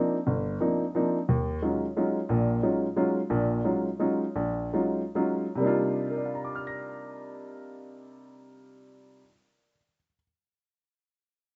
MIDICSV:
0, 0, Header, 1, 2, 480
1, 0, Start_track
1, 0, Key_signature, -3, "minor"
1, 0, Tempo, 336323
1, 398, Time_signature, 3, 2, 24, 8
1, 5198, Tempo, 365631
1, 6638, Tempo, 435098
1, 7598, Tempo, 479616
1, 13544, End_track
2, 0, Start_track
2, 0, Title_t, "Grand piano"
2, 0, Program_c, 0, 0
2, 0, Note_on_c, 0, 53, 51
2, 0, Note_on_c, 0, 58, 52
2, 0, Note_on_c, 0, 60, 55
2, 0, Note_on_c, 0, 62, 49
2, 0, Note_on_c, 0, 63, 56
2, 231, Note_off_c, 0, 53, 0
2, 232, Note_off_c, 0, 58, 0
2, 237, Note_off_c, 0, 60, 0
2, 238, Note_off_c, 0, 62, 0
2, 238, Note_off_c, 0, 63, 0
2, 382, Note_on_c, 0, 31, 68
2, 802, Note_off_c, 0, 31, 0
2, 861, Note_on_c, 0, 53, 50
2, 864, Note_on_c, 0, 60, 47
2, 865, Note_on_c, 0, 58, 48
2, 872, Note_on_c, 0, 62, 46
2, 872, Note_on_c, 0, 63, 56
2, 1187, Note_off_c, 0, 53, 0
2, 1189, Note_off_c, 0, 58, 0
2, 1189, Note_off_c, 0, 60, 0
2, 1192, Note_off_c, 0, 63, 0
2, 1193, Note_off_c, 0, 62, 0
2, 1352, Note_on_c, 0, 53, 57
2, 1361, Note_on_c, 0, 58, 49
2, 1365, Note_on_c, 0, 60, 48
2, 1365, Note_on_c, 0, 62, 48
2, 1367, Note_on_c, 0, 63, 58
2, 1673, Note_off_c, 0, 53, 0
2, 1677, Note_off_c, 0, 58, 0
2, 1679, Note_off_c, 0, 60, 0
2, 1679, Note_off_c, 0, 62, 0
2, 1680, Note_off_c, 0, 63, 0
2, 1839, Note_on_c, 0, 39, 67
2, 2251, Note_off_c, 0, 39, 0
2, 2316, Note_on_c, 0, 61, 47
2, 2317, Note_on_c, 0, 54, 50
2, 2317, Note_on_c, 0, 56, 46
2, 2317, Note_on_c, 0, 63, 47
2, 2325, Note_on_c, 0, 65, 54
2, 2634, Note_off_c, 0, 61, 0
2, 2635, Note_off_c, 0, 54, 0
2, 2635, Note_off_c, 0, 56, 0
2, 2635, Note_off_c, 0, 63, 0
2, 2639, Note_off_c, 0, 65, 0
2, 2803, Note_on_c, 0, 54, 55
2, 2807, Note_on_c, 0, 61, 51
2, 2810, Note_on_c, 0, 56, 49
2, 2813, Note_on_c, 0, 65, 60
2, 2815, Note_on_c, 0, 63, 52
2, 3118, Note_off_c, 0, 54, 0
2, 3120, Note_off_c, 0, 61, 0
2, 3121, Note_off_c, 0, 56, 0
2, 3123, Note_off_c, 0, 65, 0
2, 3124, Note_off_c, 0, 63, 0
2, 3270, Note_on_c, 0, 46, 69
2, 3276, Note_on_c, 0, 34, 64
2, 3686, Note_off_c, 0, 46, 0
2, 3689, Note_off_c, 0, 34, 0
2, 3751, Note_on_c, 0, 54, 48
2, 3751, Note_on_c, 0, 61, 50
2, 3756, Note_on_c, 0, 56, 45
2, 3757, Note_on_c, 0, 63, 47
2, 3757, Note_on_c, 0, 65, 57
2, 4071, Note_off_c, 0, 54, 0
2, 4072, Note_off_c, 0, 61, 0
2, 4074, Note_off_c, 0, 56, 0
2, 4074, Note_off_c, 0, 63, 0
2, 4074, Note_off_c, 0, 65, 0
2, 4228, Note_on_c, 0, 54, 55
2, 4229, Note_on_c, 0, 61, 54
2, 4233, Note_on_c, 0, 56, 54
2, 4240, Note_on_c, 0, 63, 49
2, 4243, Note_on_c, 0, 65, 63
2, 4550, Note_off_c, 0, 54, 0
2, 4550, Note_off_c, 0, 61, 0
2, 4552, Note_off_c, 0, 56, 0
2, 4556, Note_off_c, 0, 63, 0
2, 4557, Note_off_c, 0, 65, 0
2, 4708, Note_on_c, 0, 46, 74
2, 4711, Note_on_c, 0, 34, 66
2, 5127, Note_off_c, 0, 46, 0
2, 5129, Note_off_c, 0, 34, 0
2, 5199, Note_on_c, 0, 56, 46
2, 5200, Note_on_c, 0, 54, 53
2, 5205, Note_on_c, 0, 61, 44
2, 5209, Note_on_c, 0, 63, 43
2, 5211, Note_on_c, 0, 65, 55
2, 5500, Note_off_c, 0, 54, 0
2, 5500, Note_off_c, 0, 56, 0
2, 5503, Note_off_c, 0, 61, 0
2, 5505, Note_off_c, 0, 63, 0
2, 5506, Note_off_c, 0, 65, 0
2, 5661, Note_on_c, 0, 56, 49
2, 5663, Note_on_c, 0, 54, 53
2, 5670, Note_on_c, 0, 61, 51
2, 5670, Note_on_c, 0, 63, 52
2, 5670, Note_on_c, 0, 65, 59
2, 5972, Note_off_c, 0, 56, 0
2, 5973, Note_off_c, 0, 54, 0
2, 5976, Note_off_c, 0, 61, 0
2, 5976, Note_off_c, 0, 63, 0
2, 5976, Note_off_c, 0, 65, 0
2, 6136, Note_on_c, 0, 34, 67
2, 6569, Note_off_c, 0, 34, 0
2, 6626, Note_on_c, 0, 54, 48
2, 6632, Note_on_c, 0, 56, 45
2, 6632, Note_on_c, 0, 61, 42
2, 6636, Note_on_c, 0, 63, 46
2, 6642, Note_on_c, 0, 65, 57
2, 6932, Note_off_c, 0, 54, 0
2, 6935, Note_off_c, 0, 56, 0
2, 6935, Note_off_c, 0, 61, 0
2, 6937, Note_off_c, 0, 63, 0
2, 6939, Note_off_c, 0, 65, 0
2, 7092, Note_on_c, 0, 54, 56
2, 7093, Note_on_c, 0, 56, 44
2, 7097, Note_on_c, 0, 61, 49
2, 7103, Note_on_c, 0, 65, 59
2, 7106, Note_on_c, 0, 63, 51
2, 7421, Note_off_c, 0, 54, 0
2, 7422, Note_off_c, 0, 56, 0
2, 7424, Note_off_c, 0, 61, 0
2, 7427, Note_off_c, 0, 65, 0
2, 7429, Note_off_c, 0, 63, 0
2, 7537, Note_on_c, 0, 48, 67
2, 7561, Note_on_c, 0, 55, 63
2, 7589, Note_on_c, 0, 58, 57
2, 7612, Note_on_c, 0, 62, 61
2, 7635, Note_on_c, 0, 63, 57
2, 7658, Note_on_c, 0, 65, 72
2, 8092, Note_on_c, 0, 70, 43
2, 8161, Note_on_c, 0, 74, 40
2, 8244, Note_on_c, 0, 77, 35
2, 8338, Note_on_c, 0, 82, 39
2, 8434, Note_on_c, 0, 86, 36
2, 8544, Note_on_c, 0, 89, 37
2, 8659, Note_on_c, 0, 94, 31
2, 11187, Note_off_c, 0, 48, 0
2, 11208, Note_off_c, 0, 55, 0
2, 11234, Note_off_c, 0, 58, 0
2, 11256, Note_off_c, 0, 62, 0
2, 11280, Note_off_c, 0, 63, 0
2, 11303, Note_off_c, 0, 65, 0
2, 11696, Note_off_c, 0, 70, 0
2, 11765, Note_off_c, 0, 74, 0
2, 11848, Note_off_c, 0, 77, 0
2, 11942, Note_off_c, 0, 82, 0
2, 12038, Note_off_c, 0, 86, 0
2, 12148, Note_off_c, 0, 89, 0
2, 12230, Note_off_c, 0, 94, 0
2, 13544, End_track
0, 0, End_of_file